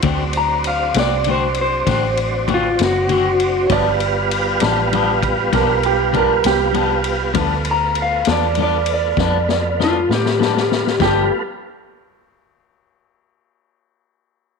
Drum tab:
RD |x-x-x-x-x-x-x-x-x-x-x-x-|x-x-x-x-x-x-x-x-x-x-x-x-|x-x-x-x-x-x-------------|------------------------|
SD |------o-----o-----o-----|------o-----o-----o-----|------o-----o-o-o-oooooo|o-----------------------|
BD |o-----------o---o-------|o---------o-o---o-------|o-----------o-----------|o-----------------------|